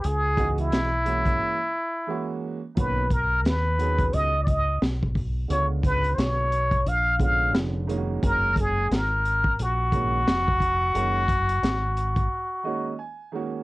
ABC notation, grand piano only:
X:1
M:4/4
L:1/8
Q:"Swing 16ths" 1/4=88
K:F#
V:1 name="Grand piano"
z8 | z8 | z8 | z8 |
z4 z d g2 |]
V:2 name="Grand piano"
z [D,=E,G,B,Fd] z [E,G,A,CF] z2 [E,G,A,CF] z | [D,A,B,CF] z2 [D,F,B,CG] z4 | [=D,G,B,CE]3 z2 [D,G,B,CE]2 [^D,G,A,CEF]- | [D,G,A,CEF]2 z3 [D,G,A,CF] z2 |
[D,G,A,CF] z4 [D,G,A,CF] z [D,G,A,CF] |]